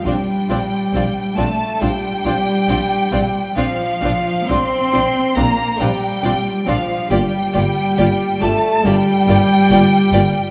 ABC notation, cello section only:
X:1
M:4/4
L:1/8
Q:1/4=69
K:Bb
V:1 name="Cello section" clef=bass
G,3 A, G,4 | F,2 C2 B, G,2 F, | G,3 A, G,4 |]